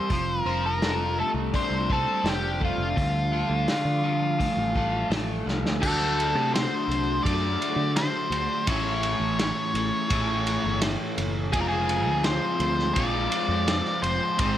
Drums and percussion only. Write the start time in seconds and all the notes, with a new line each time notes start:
0.10 kick, open hi-hat
0.82 snare, open hi-hat
1.54 kick, open hi-hat
1.90 kick
2.25 snare, open hi-hat
2.62 kick
2.97 kick, open hi-hat
3.68 snare, open hi-hat
4.40 kick, open hi-hat
4.76 kick
5.12 snare, open hi-hat
5.48 snare
5.66 snare
5.83 kick, crash
6.20 ride
6.55 snare, ride
6.91 ride
7.26 kick, ride
7.62 ride
7.96 snare, ride
8.32 ride
8.67 kick, ride
9.03 ride
9.39 snare, ride
9.75 ride
10.10 kick, ride
10.47 ride
10.81 snare, ride
11.18 ride
11.53 kick, ride
11.89 ride
12.24 snare, ride
12.60 ride
12.79 snare
12.96 kick, ride
13.32 ride
13.68 snare, ride
13.85 snare
14.03 ride
14.39 kick, ride